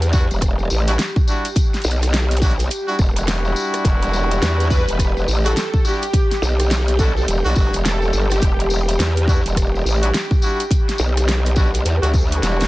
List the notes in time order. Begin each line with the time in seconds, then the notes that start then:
Already playing: E2 G4
0.02 closed hi-hat, tambourine
0.13 G3 D4 E4 F#4, kick, tambourine
0.31 E1, closed hi-hat, tambourine
0.41 kick, cross-stick, closed hi-hat, tambourine
0.59 tambourine
0.70 A1, tambourine
0.88 G3 D4 E4 F#4, closed hi-hat, tambourine
0.99 snare, closed hi-hat, tambourine
1.16 kick, tambourine
1.27 G3 D4 E4 F#4, tambourine
1.45 closed hi-hat, tambourine
1.56 kick, closed hi-hat, tambourine
1.74 snare, closed hi-hat, tambourine
1.82 B1, closed hi-hat, tambourine
1.91 closed hi-hat
2.02 cross-stick, closed hi-hat, tambourine
2.14 snare, closed hi-hat, tambourine
2.31 closed hi-hat, tambourine
2.37 closed hi-hat
2.42 G3 D4 E4 F#4, kick, closed hi-hat, tambourine
2.51 closed hi-hat
2.59 closed hi-hat, tambourine
2.70 closed hi-hat, tambourine
2.88 G3 D4 E4 F#4, tambourine
2.99 E1, kick, cross-stick, tambourine
3.16 G3 D4 E4 F#4, closed hi-hat, tambourine
3.28 snare, closed hi-hat, tambourine
3.45 tambourine
3.56 tambourine
3.74 cross-stick, closed hi-hat, tambourine
3.85 E1, kick, closed hi-hat, tambourine
4.03 closed hi-hat, tambourine
4.13 tambourine
4.31 closed hi-hat, tambourine
4.42 E2, snare, closed hi-hat, tambourine
4.60 closed hi-hat, tambourine
4.70 G3 D4 E4 F#4 B4, kick, tambourine
4.88 E1, closed hi-hat, tambourine
4.99 kick, cross-stick, closed hi-hat, tambourine
5.17 tambourine
5.28 A1, tambourine
5.44 G3 D4 E4 F#4 A4, closed hi-hat, tambourine
5.56 snare, closed hi-hat, tambourine
5.74 kick, tambourine
5.85 G3 D4 E4 F#4 G4, tambourine
6.02 closed hi-hat, tambourine
6.14 kick, closed hi-hat, tambourine
6.31 snare, closed hi-hat, tambourine
6.42 B1, tambourine
6.60 cross-stick, closed hi-hat, tambourine
6.71 snare, closed hi-hat, tambourine
6.88 closed hi-hat, tambourine
6.99 G3 D4 E4 F#4 A4, kick, tambourine
7.16 A4, tambourine
7.28 E1, closed hi-hat, tambourine
7.44 B1 G3 D4 E4 F#4, tambourine
7.55 G1 G3 D4 E4 F#4, kick, cross-stick, tambourine
7.73 E1, closed hi-hat, tambourine
7.85 A4, snare, closed hi-hat, tambourine
8.02 tambourine
8.13 G1, tambourine
8.30 G4, cross-stick, closed hi-hat, tambourine
8.41 E1, kick, closed hi-hat, tambourine
8.60 closed hi-hat, tambourine
8.70 tambourine
8.89 closed hi-hat, tambourine
8.99 E2, snare, closed hi-hat, tambourine
9.16 closed hi-hat, tambourine
9.28 G3 D4 E4 F#4, kick, tambourine
9.45 E1, closed hi-hat, tambourine
9.56 kick, cross-stick, closed hi-hat, tambourine
9.75 tambourine
9.85 A1, tambourine
10.02 G3 D4 E4 F#4, closed hi-hat, tambourine
10.14 snare, closed hi-hat, tambourine
10.31 kick, tambourine
10.42 G3 D4 E4 F#4, tambourine
10.60 closed hi-hat, tambourine
10.71 kick, closed hi-hat, tambourine
10.89 snare, closed hi-hat, tambourine
10.98 B1, tambourine
11.17 cross-stick, closed hi-hat, tambourine
11.28 snare, closed hi-hat, tambourine
11.45 closed hi-hat, tambourine
11.56 G3 D4 E4 F#4, kick, tambourine
11.74 closed hi-hat, tambourine
11.85 E2, closed hi-hat, tambourine
12.02 D2 G3 D4 E4 F#4, closed hi-hat, tambourine
12.14 kick, cross-stick, tambourine
12.31 G3 D4 E4 F#4, closed hi-hat, tambourine
12.42 E1, snare, closed hi-hat, tambourine
12.60 snare, closed hi-hat, tambourine